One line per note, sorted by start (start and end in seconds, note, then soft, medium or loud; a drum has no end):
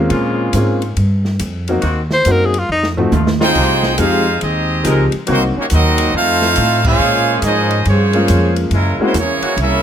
0.00 0.51 G#3 medium
0.00 0.51 A#3 medium
0.00 0.52 C4 medium
0.00 0.52 C#4 medium
0.00 0.52 F4 medium
0.08 0.52 A#2 medium
0.08 0.96 C#3 loud
0.08 0.96 G#3 loud
0.08 0.96 A#3 medium
0.08 0.96 F4 loud
0.08 ride medium
0.53 0.95 G#2 medium
0.53 0.80 G#3 medium
0.53 0.80 A#3 medium
0.53 0.80 C4 medium
0.53 0.80 C#4 medium
0.53 0.80 F4 medium
0.53 hi-hat pedal medium
0.53 ride medium
0.82 ride medium
0.97 1.39 G2 medium
0.97 ride medium
1.25 snare soft
1.39 1.82 F2 loud
1.39 hi-hat pedal medium
1.39 ride medium
1.68 1.82 F#3 medium
1.68 1.82 A#3 medium
1.68 1.82 C4 medium
1.68 1.82 D#4 medium
1.68 1.83 F#4 medium
1.68 ride medium
1.82 2.25 D#2 medium
1.82 2.01 D#3 loud
1.82 2.02 A#3 medium
1.82 2.02 C4 medium
1.82 2.01 F#4 loud
1.82 ride medium
2.11 2.33 C5 loud
2.11 snare medium
2.25 2.68 F#2 medium
2.25 2.52 F#3 medium
2.25 2.52 A#3 medium
2.25 2.52 C4 medium
2.25 2.52 D#4 medium
2.25 2.53 F#4 medium
2.25 hi-hat pedal medium
2.25 ride medium
2.31 2.47 A#4 medium
2.45 2.60 G#4 medium
2.54 ride medium
2.59 2.71 F4 medium
2.69 3.11 F2 medium
2.69 2.88 D#4 medium
2.83 snare medium
2.97 3.11 F3 medium
2.97 3.11 A3 medium
2.97 3.11 C4 medium
2.97 3.11 D#4 medium
2.97 3.12 F#4 medium
2.97 floor tom medium
3.12 3.54 D#2 loud
3.12 3.31 F3 medium
3.12 3.32 A3 medium
3.12 3.32 D#4 medium
3.12 3.31 F4 loud
3.12 hi-hat pedal medium
3.12 high tom medium
3.27 snare medium
3.41 3.94 C4 loud
3.41 3.95 D#4 loud
3.41 3.96 D#4 loud
3.41 3.94 F4 loud
3.41 3.96 G#4 loud
3.41 3.96 C5 loud
3.41 3.95 G5 loud
3.41 snare loud
3.55 3.98 C2 medium
3.55 3.75 F3 loud
3.55 3.76 G#3 medium
3.55 3.75 D#4 medium
3.55 3.76 G4 loud
3.55 kick medium
3.55 crash medium
3.83 snare medium
3.95 4.40 F2 medium
3.95 4.24 F3 medium
3.95 4.39 G#3 medium
3.95 4.24 G#3 medium
3.95 4.38 C4 medium
3.95 4.24 C4 medium
3.95 4.42 D#4 medium
3.95 4.40 F4 medium
3.95 4.41 G#4 medium
3.95 4.41 C5 medium
3.95 4.42 F5 loud
3.95 hi-hat pedal medium
3.95 ride medium
3.99 4.24 D#4 medium
3.99 4.25 G4 medium
4.39 4.84 D#2 medium
4.39 5.08 G#3 medium
4.39 5.08 C4 medium
4.39 5.09 C4 medium
4.39 5.08 D#4 medium
4.39 5.10 G4 medium
4.39 5.09 G#4 medium
4.39 5.09 D#5 medium
4.39 ride medium
4.83 5.11 C#2 medium
4.83 5.09 F3 medium
4.83 5.05 F3 loud
4.83 5.10 G#3 medium
4.83 5.05 G#3 loud
4.83 5.10 C4 medium
4.83 5.10 D#4 medium
4.83 5.04 D#4 loud
4.83 5.10 G4 medium
4.83 5.05 A#4 loud
4.83 hi-hat pedal medium
4.83 ride medium
5.12 muted upright bass stroke soft
5.12 ride medium
5.27 5.55 C2 medium
5.27 6.13 D#3 loud
5.27 5.40 D#3 medium
5.27 5.52 F#3 medium
5.27 5.40 F#3 medium
5.27 6.13 A#3 loud
5.27 5.53 A#3 medium
5.27 6.13 C4 medium
5.27 5.53 C4 medium
5.27 5.41 C4 medium
5.27 5.53 D#4 medium
5.27 6.14 F#4 loud
5.27 5.53 F#4 medium
5.27 ride medium
5.31 5.43 A#3 medium
5.31 5.43 D#4 medium
5.31 5.44 F#4 medium
5.31 5.43 C5 loud
5.57 5.66 A#3 medium
5.57 5.64 C#4 medium
5.57 5.66 D#4 medium
5.57 5.66 G4 medium
5.57 5.65 C#5 medium
5.57 muted upright bass stroke soft
5.70 6.13 D#2 loud
5.70 6.11 F#3 medium
5.70 6.11 A#3 medium
5.70 6.11 D#4 medium
5.70 6.12 A#4 medium
5.70 hi-hat pedal medium
5.70 ride medium
5.74 6.12 C4 medium
5.74 6.12 F#4 loud
5.74 6.13 D#5 loud
5.98 ride medium
6.14 6.55 F2 medium
6.14 6.85 A3 loud
6.14 6.85 C4 loud
6.14 6.86 D#4 loud
6.14 6.83 F4 loud
6.14 6.86 A4 loud
6.14 6.85 C5 loud
6.14 6.86 F5 loud
6.42 snare medium
6.56 6.99 A2 loud
6.56 hi-hat pedal medium
6.56 ride medium
6.84 7.38 G#3 loud
6.84 7.38 C#4 loud
6.84 7.40 C#4 loud
6.84 7.38 F4 loud
6.84 7.39 G#4 loud
6.84 7.40 C5 loud
6.84 7.40 F5 loud
6.84 kick loud
6.84 crash medium
6.99 7.41 A#2 medium
6.99 8.20 C#3 loud
6.99 8.20 A#3 loud
6.99 8.20 C#4 loud
6.99 8.20 G#4 loud
7.42 7.84 G#2 medium
7.42 7.84 F3 medium
7.42 7.83 G#3 medium
7.42 7.83 D#4 medium
7.42 7.84 C5 medium
7.42 7.84 D#5 loud
7.42 hi-hat pedal medium
7.42 ride medium
7.46 7.85 C#4 medium
7.46 7.85 G#4 medium
7.71 ride medium
7.85 8.28 G2 medium
7.85 8.58 F3 medium
7.85 8.57 C#4 medium
7.85 8.59 F4 medium
7.85 8.57 G#4 medium
7.85 8.59 G#4 medium
7.85 8.58 C5 medium
7.85 8.58 C#5 medium
7.85 ride medium
8.13 8.69 G#3 medium
8.13 8.69 A#3 medium
8.13 8.69 C#4 medium
8.13 8.69 F4 medium
8.13 ride medium
8.28 8.70 F2 loud
8.28 hi-hat pedal medium
8.28 ride medium
8.56 ride medium
8.71 8.98 F#2 medium
8.71 8.99 C#3 medium
8.71 8.98 E3 medium
8.71 8.99 G#3 medium
8.71 8.99 A#3 medium
8.71 8.99 C#4 medium
8.71 8.99 E4 medium
8.71 8.99 A#4 loud
8.71 ride medium
8.99 9.13 G#3 medium
8.99 9.13 A#3 medium
8.99 9.14 C4 medium
8.99 9.14 C#4 medium
8.99 9.14 E4 medium
8.99 9.15 E4 medium
8.99 9.14 F#4 medium
8.99 muted upright bass stroke soft
9.03 9.15 G#3 medium
9.03 9.16 C#4 medium
9.03 9.16 C5 medium
9.14 9.41 E2 loud
9.14 9.57 E3 medium
9.14 9.57 A#3 medium
9.14 9.58 C#4 medium
9.14 hi-hat pedal medium
9.14 ride medium
9.19 9.60 A#3 medium
9.19 9.60 E4 medium
9.19 9.60 G#4 medium
9.19 9.60 C#5 loud
9.42 9.53 E3 medium
9.42 9.53 G#3 medium
9.42 9.53 A#3 medium
9.42 9.53 F#4 loud
9.42 muted upright bass stroke soft
9.42 ride medium
9.57 9.82 C2 medium
9.57 9.82 A#3 medium
9.57 9.82 C#4 loud
9.57 9.82 E4 loud
9.57 ride medium
9.61 9.82 C#4 loud
9.61 9.82 G#4 loud
9.61 9.82 A#4 medium
9.61 9.82 E5 loud